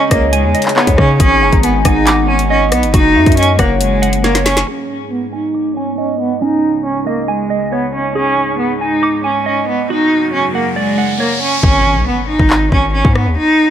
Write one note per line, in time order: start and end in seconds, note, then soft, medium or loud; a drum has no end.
0.00 1.18 C#3 medium
0.00 0.55 C#4 medium
0.00 1.18 C#4 medium
0.00 2.90 D#4 medium
0.00 1.18 G#4 medium
0.00 0.10 D#5 loud
0.11 0.45 C#2 loud
0.11 0.28 A#3 medium
0.11 1.16 C#5 loud
0.11 0.53 D#5 medium
0.11 kick loud
0.11 cross-stick loud
0.11 closed hi-hat medium
0.33 0.74 G#3 medium
0.33 1.20 G#5 loud
0.33 closed hi-hat medium
0.44 0.54 E2 loud
0.54 1.20 D#5 medium
0.54 closed hi-hat medium
0.62 clap medium
0.62 closed hi-hat medium
0.69 closed hi-hat medium
0.76 0.93 B3 medium
0.76 1.20 C#5 medium
0.76 clap loud
0.87 0.98 E2 loud
0.87 kick loud
0.87 closed hi-hat medium
0.98 1.19 C#3 loud
0.98 1.15 C#4 medium
0.98 kick loud
0.98 cross-stick medium
1.19 1.43 G#1 loud
1.19 2.92 G#3 medium
1.19 2.92 B3 medium
1.19 1.60 C#4 loud
1.19 2.29 G#4 loud
1.19 kick loud
1.19 closed hi-hat medium
1.42 1.52 F#1 loud
1.42 1.62 A#5 medium
1.52 1.84 G#1 loud
1.52 kick loud
1.52 closed hi-hat soft
1.63 1.80 B3 medium
1.63 1.84 G#5 medium
1.63 closed hi-hat medium
1.85 2.74 G#1 loud
1.85 2.26 D#4 medium
1.85 2.90 F#5 medium
1.85 2.27 G#5 medium
1.85 kick medium
1.85 cross-stick loud
1.85 closed hi-hat medium
2.07 2.94 D6 loud
2.07 clap loud
2.07 closed hi-hat medium
2.28 2.45 C#4 medium
2.28 2.94 G#5 medium
2.39 closed hi-hat medium
2.50 2.67 C#4 medium
2.50 2.94 D#5 medium
2.72 2.84 B1 loud
2.72 2.89 B3 medium
2.72 cross-stick medium
2.72 closed hi-hat medium
2.83 2.93 G#1 loud
2.83 closed hi-hat medium
2.94 3.17 F#1 loud
2.94 4.66 F#3 medium
2.94 4.66 A#3 medium
2.94 4.66 C#4 medium
2.94 3.35 D#4 loud
2.94 4.03 F#4 loud
2.94 kick loud
2.94 closed hi-hat medium
3.16 3.26 F#2 loud
3.16 3.36 E5 medium
3.26 3.58 F#2 loud
3.26 kick loud
3.26 closed hi-hat soft
3.32 closed hi-hat medium
3.37 3.54 C#4 loud
3.37 3.58 D#5 medium
3.37 closed hi-hat medium
3.43 closed hi-hat medium
3.59 4.64 F#1 loud
3.59 3.75 A#3 medium
3.59 4.64 C#5 medium
3.59 4.01 F#5 medium
3.59 kick loud
3.59 cross-stick loud
3.59 closed hi-hat medium
3.81 4.22 G#3 medium
3.81 closed hi-hat medium
4.02 4.68 F#5 medium
4.02 closed hi-hat medium
4.13 closed hi-hat medium
4.24 4.40 A#3 medium
4.24 4.68 C#5 medium
4.24 snare medium
4.35 snare medium
4.35 closed hi-hat medium
4.46 4.62 C#4 medium
4.46 snare loud
4.46 open hi-hat medium
4.57 snare loud
4.68 6.40 G#2 medium
4.68 9.85 G#3 medium
4.68 6.40 B3 medium
4.68 5.09 C#4 loud
4.68 6.40 D#4 medium
4.68 5.76 G#4 medium
5.12 5.28 B3 medium
5.33 5.74 D#4 medium
5.33 5.76 G#5 medium
5.54 6.42 D6 medium
5.76 5.93 C#4 medium
5.76 6.42 G#5 medium
5.98 6.14 C#4 medium
5.98 6.42 D#5 medium
6.20 6.36 B3 medium
6.41 8.14 C#2 medium
6.41 8.14 C#3 medium
6.41 7.50 C#4 medium
6.41 6.82 D#4 loud
6.41 9.86 D#4 medium
6.85 7.02 C#4 medium
7.07 7.24 A#3 medium
7.07 7.49 D#5 medium
7.28 7.70 G#3 medium
7.28 8.15 G#5 medium
7.50 8.15 D#5 medium
7.72 7.88 B3 medium
7.72 8.16 C#5 medium
7.94 8.10 C#4 medium
8.15 9.88 G#2 medium
8.15 9.88 B3 medium
8.15 8.56 C#4 loud
8.15 9.24 G#4 medium
8.15 riser medium
8.59 8.75 B3 medium
8.81 9.22 D#4 medium
8.81 9.23 G#5 medium
9.03 9.90 D6 loud
9.24 9.41 C#4 medium
9.24 9.89 G#5 medium
9.46 9.63 C#4 medium
9.46 9.89 D#5 medium
9.68 9.84 B3 medium
9.89 11.62 F#2 medium
9.89 11.62 C#3 medium
9.89 11.62 F#3 medium
9.89 11.62 A#3 medium
9.89 10.30 D#4 loud
9.89 10.99 F#4 medium
10.33 10.49 C#4 medium
10.54 10.71 A#3 medium
10.54 10.97 F#5 medium
10.76 11.18 G#3 medium
10.76 11.63 D5 loud
10.98 11.63 F#5 medium
11.19 11.36 A#3 medium
11.19 11.63 C#5 medium
11.42 11.58 C#4 medium
11.63 11.97 G#1 loud
11.63 12.04 C#4 loud
11.63 kick loud
11.63 impact medium
11.96 12.06 B1 loud
12.07 12.23 B3 medium
12.29 12.69 D#4 medium
12.39 12.71 G#1 loud
12.39 kick medium
12.50 clap loud
12.72 13.03 G#1 loud
12.72 12.88 C#4 medium
12.72 kick medium
12.93 13.10 C#4 medium
13.05 13.28 G#2 loud
13.05 kick loud
13.15 13.32 B3 medium
13.15 cross-stick medium
13.26 13.37 D#2 loud
13.37 13.70 D#4 loud